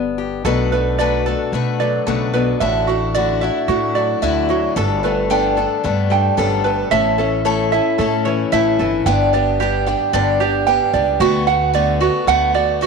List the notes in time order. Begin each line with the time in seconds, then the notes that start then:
Already playing: G1 G2 D3 B3 D4 G4
0.18 G4
0.45 B1 B2 F#3 A3 D4 F#4 A4 B4
0.72 A3 D4 F#4 B4
0.98 B2 F#3 A3 D4 F#4 A4 B4 D5
1.26 A3 D4 F#4 A4 B4
1.52 B2 A3 D4 F#4 B4
1.80 F#3 A3 D4 F#4 B4 D5
2.07 B1 B2 C#3 F#3 A3 D4 F#4 A4 B4
2.33 B2 A3 D4 F#4 B4
2.60 A1 A2 D3 D4 E4 F#4 E5
2.87 A3 D4 E4 F#4
3.15 A2 D3 D4 E4 F#4 D5
3.41 D4 E4 F#4 E5
3.68 A2 D3 A3 D4 E4 F#4
3.95 F#3 D4 E4 F#4 D5
4.22 D2 A2 D3 D4 E4 F#4 E5
4.49 F#3 D4 E4 F#4
4.76 G1 G2 G3 B3 D4 A4
5.03 A3 B3 D4 A4 B4
5.30 G3 B3 D4 A4 G5
5.57 B3 D4 A4
5.84 G2 G3 A3 B3 D4 A4
6.10 G3 B3 D4 A4 G5
6.37 G1 F#2 G3 B3 D4 A4
6.64 G2 B3 D4 A4 B4
6.91 A1 A2 A3 C#4 E4 A4 E5
7.18 C#4 E4 A4
7.45 A2 A3 C#4 E4 A4 C#5
7.72 C#4 E4 A4 E5
7.98 A2 A3 C#4 E4 A4
8.25 E3 C#4 E4 A4 C#5
8.52 A1 A2 A3 C#4 E4 A4 E5
8.79 G1 E3 C#4 E4 A4
9.06 G1 G2 D3 G3 B3 D4 G4 G5
9.33 G3 B3 D4 G4 D5
9.60 G3 B3 D4 G4
9.86 G3 B3 D4 G4 G5
10.13 G1 G2 D3 G3 B3 D4 G4 D5
10.40 G3 B3 D4 G4
10.67 G3 B3 D4 G4 G5
10.93 C#2 G3 B3 D4 G4 D5
11.20 D2 D3 A3 B3 F#4
11.47 A3 B3 F#4 F#5
11.74 D3 A3 B3 F#4 D5
12.00 A3 B3 F#4
12.27 D2 D3 A3 B3 F#4 F#5
12.54 A3 B3 F#4 D5
12.81 D3 A3 B3 F#4